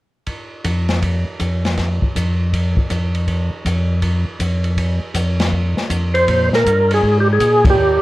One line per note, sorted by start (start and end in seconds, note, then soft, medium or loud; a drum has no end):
0.27 kick soft
0.27 ride soft
0.64 1.25 F2 medium
0.64 kick soft
0.64 hi-hat pedal soft
0.64 ride soft
0.89 snare soft
0.89 ride soft
1.02 kick soft
1.02 ride soft
1.40 2.00 F2 medium
1.40 kick soft
1.40 hi-hat pedal soft
1.40 ride soft
1.65 snare soft
1.65 ride soft
1.77 kick soft
1.77 snare soft
1.77 ride soft
2.02 kick soft
2.15 2.75 F2 medium
2.15 kick soft
2.15 hi-hat pedal soft
2.15 ride soft
2.53 kick soft
2.53 ride soft
2.77 kick soft
2.90 3.50 F2 medium
2.90 kick soft
2.90 hi-hat pedal soft
2.90 ride soft
3.15 ride soft
3.27 kick soft
3.27 ride soft
3.64 4.25 F2 medium
3.64 kick soft
3.64 hi-hat pedal soft
3.64 ride medium
4.02 kick soft
4.02 ride soft
4.39 5.00 F2 medium
4.39 kick soft
4.39 hi-hat pedal soft
4.39 ride soft
4.64 ride soft
4.77 kick soft
4.77 ride soft
5.14 5.75 F2 medium
5.14 kick soft
5.14 hi-hat pedal soft
5.14 ride medium
5.40 snare soft
5.40 ride soft
5.52 kick soft
5.77 snare soft
5.90 6.50 F2 medium
5.90 kick soft
5.90 hi-hat pedal soft
5.90 ride soft
6.14 6.49 C5 medium
6.14 ride soft
6.28 6.64 A#2 medium
6.28 kick soft
6.28 ride soft
6.53 6.92 A#4 medium
6.53 snare soft
6.65 7.01 G2 medium
6.65 kick soft
6.65 hi-hat pedal medium
6.65 ride medium
6.90 7.18 G#4 medium
6.90 ride medium
7.03 7.39 G#2 medium
7.03 kick soft
7.20 7.28 G4 medium
7.33 7.64 G#4 medium
7.40 7.76 A#2 medium
7.40 kick soft
7.40 hi-hat pedal soft
7.40 ride medium
7.65 kick medium
7.65 ride medium
7.70 8.02 G4 medium
7.76 7.99 D#2 medium